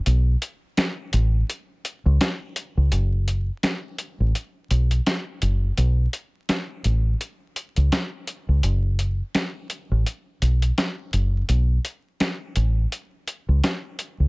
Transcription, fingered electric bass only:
X:1
M:4/4
L:1/16
Q:"Swing 16ths" 1/4=84
K:A
V:1 name="Fingered electric bass" clef=bass
B,,,2 z4 A,,,2 z3 C,, z3 C,, | F,,,4 z3 A,,, z2 B,,,2 z2 F,,,2 | B,,,2 z4 A,,,2 z3 C,, z3 C,, | F,,,4 z3 A,,, z2 B,,,2 z2 F,,,2 |
B,,,2 z4 A,,,2 z3 C,, z3 C,, |]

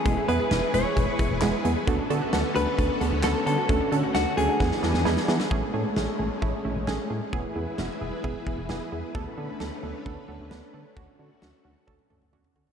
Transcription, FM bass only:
X:1
M:4/4
L:1/16
Q:1/4=132
K:A
V:1 name="FM bass" clef=bass
E,,, z E,, z E,,, z E,,, z E,,, z E,,, E,,, E,,, z E,, z | D,, z D, z D,, z D,, z D,, z D,, D,, D,, z D, z | D,, z D, z D,, z D,, z E,, z E,, E,, E,, z E, z | A,,, z A,, z A,,, z A,,, z A,,, z A,,, A,,, A,,, z A,, z |
E,,, z E,, z E,,, z E,,, z E,,, z E,,, E,,, E,,, z E,, z | D,, z D, z D,, z D,, z D,, z D,, D,, D,, z D, z | D,, z D, z D,, z D,, z D,, z D,, D,, D,, z D, z |]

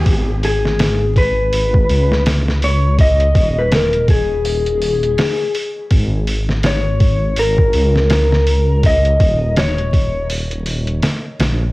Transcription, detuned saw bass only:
X:1
M:4/4
L:1/8
Q:"Swing 16ths" 1/4=82
K:G#m
V:1 name="Detuned saw bass" clef=bass
G,,,4 G,,, C,,3- | C,, D,,,4- D,,, z2 | G,,,4 G,,, C,,3- | C,, D,,,4- D,,, z A,,, |]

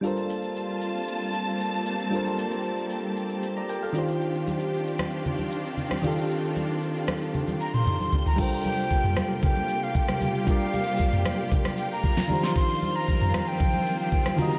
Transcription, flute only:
X:1
M:4/4
L:1/16
Q:1/4=115
K:Gm
V:1 name="Flute"
z16 | z16 | z16 | z8 z2 b c'4 b |
g8 g3 f g3 g | f8 z2 g b4 c' | c'3 b4 g4 g3 b2 |]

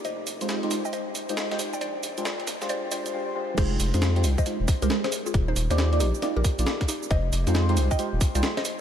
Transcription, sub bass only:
X:1
M:4/4
L:1/16
Q:"Swing 16ths" 1/4=136
K:Fdor
V:1 name="Sub bass" clef=bass
F,,,2 F,,, F,,3 C,, z2 E,,, z C,, z4 | B,,,2 B,,, B,,3 F,,, z2 A,,, z F,,, z4 | F,,,2 F,,, F,,3 C,, z2 E,,, z C,, z4 | E,,,2 E,,, E,,3 B,,, z2 B,,, z B,,, z4 |
F,,,2 F,,, F,,3 C,, z2 E,,, z C,, z4 |]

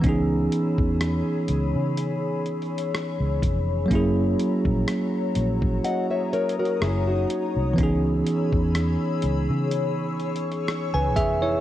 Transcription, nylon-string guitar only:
X:1
M:4/4
L:1/16
Q:"Swing 16ths" 1/4=62
K:C#dor
V:1 name="Nylon-string guitar"
z16 | z8 [df] [ce] [Ac] [FA] [EG] [DF]3 | z16 |]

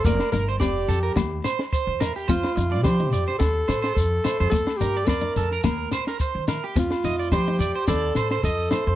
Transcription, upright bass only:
X:1
M:4/4
L:1/16
Q:"Swing 16ths" 1/4=107
K:Fmix
V:1 name="Upright bass" clef=bass
F,,, z G,,,2 F,,,2 F,,2 E,,2 z3 =E,,2 z | F,, z F,,2 F,2 F,, z E,,2 A,,2 F,,2 z F,, | F,, z G,,2 F,,2 F,,2 E,,2 z3 E,2 z | F,, z F,,2 F,2 F,, z E,,2 A,,2 F,,2 z F,, |]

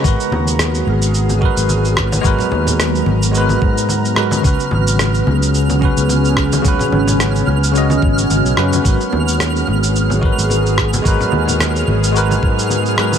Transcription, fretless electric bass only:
X:1
M:4/4
L:1/16
Q:"Swing 16ths" 1/4=109
K:G#dor
V:1 name="Fretless electric bass" clef=bass
G,,, z D,,3 z G,,,4 z G,,,4 z | G,,, z D,,3 z G,,,3 z G,,4- G,, z | C,, z G,,,3 z C,,4 z C,,4 z | C,, z G,,,3 z C,,3 z G,,,2 G,,, B,,, F,, z |
G,,, z D,,3 z G,,,4 z G,,,4 z | G,,, z D,,3 z G,,,3 z G,,4- G,, z |]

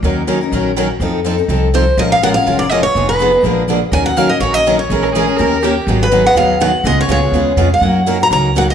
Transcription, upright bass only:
X:1
M:4/4
L:1/8
Q:"Swing" 1/4=247
K:Bbm
V:1 name="Upright bass" clef=bass
E,,4 B,,,4 | F,,4 C,,4 | B,,,4 F,,,4 | F,,,4 B,,,4 |
[K:Ebm] E,,4 B,,,4 | B,,,4 E,,4 | A,,,4 E,,4 | D,,2 D,,2 E,,2 F,,2 |
G,,4 D,,4 |]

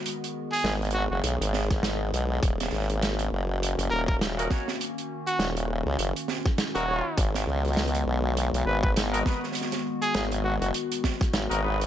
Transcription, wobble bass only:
X:1
M:4/4
L:1/16
Q:"Swing 16ths" 1/4=101
K:G#m
V:1 name="Wobble bass" clef=bass
z4 G,,,3 F,,, B,,, G,,,3 G,,,2 B,,,2 | D,,,2 G,,,4 F,,,3 F,,, D,,,4 z2 | z4 D,,,3 C,, F,,, z4 D,,,2 z | G,,,2 C,,4 B,,,3 B,,, G,,,4 z2 |
z4 G,,,3 F,,, z4 G,,, G,,,3 |]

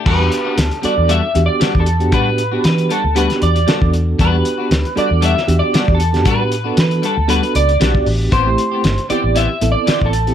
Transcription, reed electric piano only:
X:1
M:4/4
L:1/16
Q:"Swing 16ths" 1/4=116
K:Em
V:1 name="Reed electric piano"
z [B,DFG]4 z [B,DFA]3 z [B,DFG]4 z [B,DFG]- | [B,DFG]2 z [B,DFG]4 z [B,DFG]3 z [B,DFA]4 | z [B,DFG]4 z [B,DFA]3 z [B,DFG]4 z [B,DFG]- | [B,DFG]2 z [B,DFA]4 z [B,DFA]3 z [B,DFG]4 |
z [A,CEG]4 z [B,CEG]3 z [B,CEA]4 z [B,CEG] |]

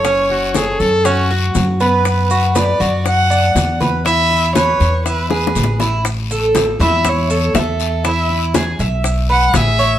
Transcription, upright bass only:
X:1
M:4/4
L:1/8
Q:1/4=120
K:A
V:1 name="Upright bass" clef=bass
F,,,3 F,,3 F,,2- | F,,3 F,,3 E,,2- | E,,3 E,,3 A,,,2- | A,,,3 E,,3 E,,2- |
E,,3 B,,,3 A,,,2 |]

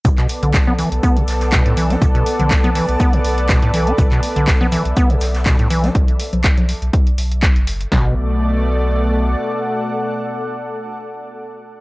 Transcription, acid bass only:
X:1
M:4/4
L:1/16
Q:"Swing 16ths" 1/4=122
K:Bm
V:1 name="Acid bass" clef=bass
B,, B,, z D, B,, B, E, z B, B,, z2 B,, A,, E, D | B,, B,, z D, B,, B, E, z B, B,, z2 B,, A,, E, D | B,, B,, z D, B,, B, E, z B, B,, z2 B,, A,, E, D | z16 |
B,,2 z12 z2 | z16 |]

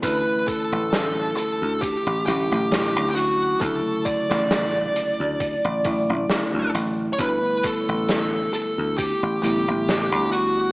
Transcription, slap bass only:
X:1
M:4/4
L:1/16
Q:"Swing 16ths" 1/4=67
K:D
V:1 name="Slap bass" clef=bass
D,, z2 A,,,3 z D,,2 A,,, A,,, A,,,2 D,,3 | D,, z2 A,,,3 z D,,2 A,,, A,,, A,,, z D,, A,,,2 | D,, z2 A,,,3 z D,,2 A,,, A,,, A,,,2 D,,3 |]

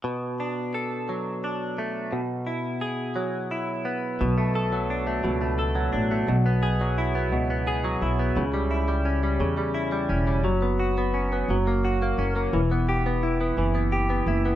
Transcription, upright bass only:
X:1
M:6/8
L:1/8
Q:3/8=58
K:Bm
V:1 name="Upright bass" clef=bass
z6 | z6 | B,,,3 C,,2 A,,, | B,,,3 C,,2 B,,, |
C,,3 E,,2 E,,, | F,,,3 F,,,2 F,,, | E,,,3 F,,,2 F,,, |]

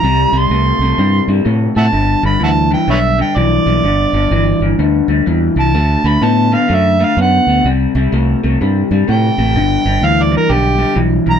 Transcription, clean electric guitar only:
X:1
M:4/4
L:1/8
Q:"Swing" 1/4=126
K:G
V:1 name="Clean electric guitar" clef=bass
[C,G,] [C,G,] [C,A,] [C,A,] [C,G,] [C,G,] [C,A,] [C,A,] | [G,,D,] [G,,D,] [G,,E,] [G,,E,] [G,,D,] [G,,D,] [G,,E,] [G,,E,] | [G,,D,] [G,,D,] [G,,E,] [G,,E,] [G,,D,] [G,,D,] [G,,E,] [G,,E,] | [D,A,] [D,A,] [D,B,] [D,B,] [D,A,] [D,A,] [D,B,] [D,B,] |
[C,G,] [C,G,] [C,A,] [C,A,] [C,G,] [C,G,] [C,A,] [C,A,] | [G,,D,] [G,,D,] [G,,E,] [G,,E,] [G,,D,] [G,,D,] [G,,E,] [G,,E,] |]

